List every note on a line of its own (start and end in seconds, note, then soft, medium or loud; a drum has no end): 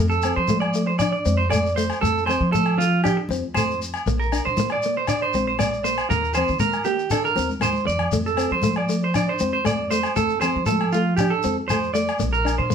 0.00 0.31 F2 medium
0.00 0.15 A3 medium
0.10 0.35 A4 medium
0.10 shekere soft
0.22 0.41 C4 medium
0.22 muted conga soft
0.22 low agogo medium
0.22 shekere medium
0.36 1.11 F3 medium
0.36 0.60 C5 medium
0.48 0.66 A3 medium
0.48 high conga medium
0.48 shekere loud
0.60 0.86 D5 medium
0.60 low agogo medium
0.74 0.91 A3 medium
0.74 shekere medium
0.87 0.98 C5 medium
0.99 1.17 D4 medium
0.99 1.11 D5 medium
0.99 muted conga soft
0.99 low agogo medium
0.99 shekere medium
1.12 1.37 D5 medium
1.26 1.90 F2 medium
1.26 1.42 C4 medium
1.26 high conga medium
1.26 shekere medium
1.37 1.50 C5 medium
1.50 1.68 A3 medium
1.50 1.75 D5 medium
1.50 high conga medium
1.50 low agogo medium
1.50 shekere loud
1.66 shekere soft
1.76 1.93 A3 medium
1.76 2.01 C5 medium
1.76 shekere medium
1.90 low agogo medium
1.90 shekere soft
2.01 2.35 F2 medium
2.01 2.19 A3 medium
2.01 2.26 A4 medium
2.01 muted conga soft
2.01 shekere medium
2.18 shekere soft
2.26 2.45 C4 medium
2.26 2.51 C5 medium
2.26 muted conga soft
2.26 low conga medium
2.26 low agogo medium
2.26 shekere medium
2.41 3.15 F3 medium
2.52 2.71 A3 medium
2.52 2.77 A4 medium
2.52 high conga medium
2.52 shekere medium
2.66 low agogo medium
2.78 2.94 F3 medium
2.78 3.03 F4 medium
2.78 shekere medium
3.04 3.21 D4 medium
3.04 3.17 G4 medium
3.04 muted conga soft
3.04 low agogo medium
3.04 shekere medium
3.17 muted clean electric guitar stroke medium
3.29 3.94 F2 medium
3.29 3.46 C4 medium
3.29 high conga medium
3.29 shekere medium
3.54 3.73 A3 medium
3.54 3.79 C5 medium
3.54 high conga medium
3.54 low agogo medium
3.54 shekere medium
3.71 shekere soft
3.81 muted conga soft
3.81 shekere medium
3.94 low agogo medium
3.94 shekere soft
4.06 4.39 A#1 medium
4.06 4.23 A#3 medium
4.06 muted conga soft
4.06 shekere medium
4.20 4.44 A#4 medium
4.20 shekere soft
4.32 4.48 D4 medium
4.32 muted conga soft
4.32 low agogo medium
4.32 shekere medium
4.45 5.20 A#2 medium
4.45 4.69 C5 medium
4.57 4.75 A#3 medium
4.57 high conga medium
4.57 shekere medium
4.70 4.96 D5 medium
4.70 low agogo medium
4.82 5.01 A#3 medium
4.82 shekere medium
4.97 5.08 C5 medium
5.07 5.24 D4 medium
5.07 5.21 D5 medium
5.07 muted conga soft
5.07 low agogo medium
5.07 shekere medium
5.22 5.46 C5 medium
5.33 5.98 A#1 medium
5.33 5.50 C4 medium
5.33 high conga medium
5.33 shekere medium
5.47 5.59 C5 medium
5.59 5.75 A#3 medium
5.59 5.83 D5 medium
5.59 high conga medium
5.59 low agogo medium
5.59 shekere medium
5.73 shekere soft
5.84 6.00 A#3 medium
5.84 6.08 C5 medium
5.84 muted conga soft
5.84 shekere medium
5.98 low agogo medium
5.98 shekere soft
6.10 6.43 D#2 medium
6.10 6.26 A#3 medium
6.10 6.34 A#4 medium
6.10 muted conga soft
6.10 shekere medium
6.24 shekere soft
6.34 6.53 C4 medium
6.34 6.59 C5 medium
6.34 muted conga soft
6.34 low conga medium
6.34 low agogo medium
6.34 shekere medium
6.48 7.23 D#3 medium
6.48 shekere soft
6.59 6.77 A#3 medium
6.59 6.84 A#4 medium
6.59 high conga medium
6.59 shekere medium
6.73 low agogo medium
6.73 shekere soft
6.84 7.02 A#3 medium
6.84 7.10 G4 medium
6.84 shekere medium
6.99 shekere soft
7.10 7.28 D4 medium
7.10 7.24 A4 medium
7.10 muted conga soft
7.10 low agogo medium
7.10 shekere medium
7.25 7.49 A#4 medium
7.25 shekere soft
7.36 7.59 D#2 medium
7.36 7.52 C4 medium
7.36 high conga medium
7.36 shekere medium
7.49 high conga soft
7.49 shekere soft
7.60 7.85 D#2 medium
7.60 7.78 A#3 medium
7.60 7.86 C5 medium
7.60 high conga medium
7.60 low agogo medium
7.60 shekere medium
7.73 high conga medium
7.73 shekere soft
7.85 8.11 F2 medium
7.85 8.11 D5 medium
7.85 muted clean electric guitar stroke medium
7.85 low conga medium
7.85 shekere medium
7.98 low conga medium
7.98 low agogo medium
8.12 8.46 F2 medium
8.12 8.29 A3 medium
8.12 shekere medium
8.26 8.51 A4 medium
8.26 shekere soft
8.36 8.54 C4 medium
8.36 muted conga soft
8.36 low agogo medium
8.36 shekere medium
8.51 9.26 F3 medium
8.51 8.76 C5 medium
8.62 8.80 A3 medium
8.62 high conga medium
8.62 shekere loud
8.76 9.02 D5 medium
8.76 low agogo medium
8.89 9.06 A3 medium
8.89 shekere medium
9.04 9.15 C5 medium
9.13 9.31 D4 medium
9.13 9.28 D5 medium
9.13 muted conga soft
9.13 low agogo medium
9.13 shekere medium
9.29 9.52 C5 medium
9.39 10.04 F2 medium
9.39 9.57 C4 medium
9.39 high conga medium
9.39 shekere medium
9.53 9.65 C5 medium
9.65 9.81 A3 medium
9.65 9.90 D5 medium
9.65 high conga medium
9.65 low agogo medium
9.65 shekere medium
9.91 10.07 A3 medium
9.91 10.15 C5 medium
9.91 muted conga soft
9.91 shekere medium
10.03 low agogo medium
10.03 shekere soft
10.16 10.50 F2 medium
10.16 10.33 A3 medium
10.16 10.40 A4 medium
10.16 muted conga soft
10.16 shekere medium
10.29 shekere soft
10.41 10.59 C4 medium
10.41 10.66 C5 medium
10.41 muted conga soft
10.41 low conga medium
10.41 low agogo medium
10.41 shekere medium
10.56 11.30 F3 medium
10.66 10.84 A3 medium
10.66 10.91 A4 medium
10.66 high conga medium
10.66 shekere medium
10.81 low agogo medium
10.92 11.10 A3 medium
10.92 11.16 F4 medium
10.92 shekere medium
11.16 11.36 D4 medium
11.16 11.30 G4 medium
11.16 muted conga soft
11.16 low agogo medium
11.16 shekere medium
11.30 11.55 A4 medium
11.43 12.08 F2 medium
11.43 11.60 C4 medium
11.43 high conga medium
11.43 shekere medium
11.68 11.87 A3 medium
11.68 11.93 C5 medium
11.68 high conga medium
11.68 low agogo medium
11.68 shekere medium
11.83 shekere soft
11.94 12.11 A3 medium
11.94 12.19 D5 medium
11.94 muted conga soft
11.94 shekere medium
12.08 low agogo medium
12.08 shekere soft
12.19 12.53 A#1 medium
12.19 12.36 A#3 medium
12.19 muted conga soft
12.19 shekere medium
12.33 12.58 A#4 medium
12.33 shekere soft
12.45 12.61 D4 medium
12.45 muted conga soft
12.45 low agogo medium
12.45 shekere medium
12.58 12.75 A#2 medium
12.58 12.75 C5 medium
12.70 12.75 A#3 medium
12.70 high conga medium
12.70 shekere medium